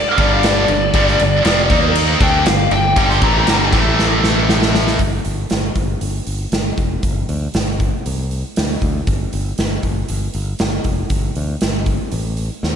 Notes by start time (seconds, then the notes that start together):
Already playing: G3 D4 A4
0.08 F5
0.18 G1 G2 D3 G3 D5, kick, crash
0.34 F5
0.43 D5, snare, crash
0.68 G1 G2 D3, crash
0.94 G1 G2 D3 G3, kick, crash
1.08 snare
1.19 G1 G2 D3, crash
1.44 F1 F2 C3 F3, snare, crash
1.70 D#2 D#3 A#3 D#4 A#4 F5, kick, crash
1.95 crash
2.20 D2 D3 G3 A3 D4 G4 G5, kick, crash
2.46 G1 G2 D3 F5, snare, crash
2.71 G1 G2 D3 G5, crash
2.96 G1 G2 D3 G3 G5, kick, crash
3.09 C6, snare
3.22 A1 A2 E3 A3 A#5, kick, crash
3.47 G1 G2 D3 G3, snare, crash
3.72 A1 A2 E3 A3 E4, kick, crash
3.99 snare
4.24 snare
4.49 snare
4.62 snare
4.75 snare
4.87 snare
4.99 G1, kick, open hi-hat
5.25 G1, open hi-hat
5.50 G1, snare, open hi-hat
5.75 G1, kick, open hi-hat
6.01 G1, open hi-hat
6.27 G1, open hi-hat
6.52 G1, snare, open hi-hat
6.77 F1, kick, open hi-hat
7.03 G1, kick, open hi-hat
7.29 D2, open hi-hat
7.54 G1, snare, open hi-hat
7.80 kick, open hi-hat
8.06 C2, open hi-hat
8.31 open hi-hat
8.56 D2, snare, open hi-hat
8.82 D2, kick, open hi-hat
9.07 G1, kick, open hi-hat
9.33 G1, open hi-hat
9.58 G1, snare, open hi-hat
9.83 G1, kick, open hi-hat
10.08 G1, open hi-hat
10.34 G1, open hi-hat
10.59 G1, snare, open hi-hat
10.84 F1, kick, open hi-hat
11.10 G1, kick, open hi-hat
11.36 D2, open hi-hat
11.61 G1, snare, open hi-hat
11.86 kick, open hi-hat
12.12 A1, open hi-hat
12.37 open hi-hat
12.63 D#2, snare